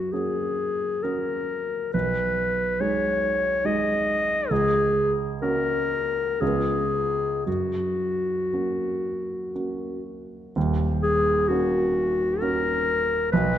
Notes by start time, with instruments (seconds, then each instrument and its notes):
Already playing: grand piano F#2, clarinet F#4
0.12 grand piano A#3 C#4 F#4, clarinet G#4
1.03 grand piano A#3 C#4 F#4, clarinet A#4
1.94 grand piano B1, clarinet B4
2.80 grand piano G#3 D#4 G#4, clarinet C#5
3.65 grand piano G#3 D#4 G#4, clarinet D#5
4.50 grand piano C#2, clarinet G#4
5.42 grand piano A#3 C#4 F#4, clarinet A#4
6.40 grand piano C#2 B3 C#4 F4, clarinet G#4
7.46 grand piano F#2, clarinet F#4
8.53 grand piano A#3 C#4 F#4
9.55 grand piano A#3 C#4 F#4
10.56 grand piano D#1 D#2
11.03 clarinet G#4
11.48 grand piano A#3 C#4 F#4, clarinet F#4
12.41 grand piano A#3 C#4 F#4, clarinet A#4
13.32 grand piano B1 B2, clarinet B4